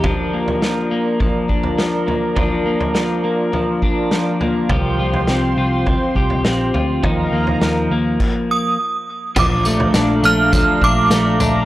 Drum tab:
CC |----------------|----------------|----------------|--------x-------|
TB |----------------|----------------|----------------|----------------|
SD |----o-------o---|----o-------o---|----o-------o---|----o-----------|
FT |o--o----o--o--o-|o--o----o-----o-|o--o----o--o--o-|o--o------------|
BD |o-------o-o-----|o---------o-----|o-------o-o-----|o-------o-------|

CC |x---------------|
TB |x-x-x-x-x---x-x-|
SD |----o-------o---|
FT |o--o----o-----o-|
BD |o-------o-o-----|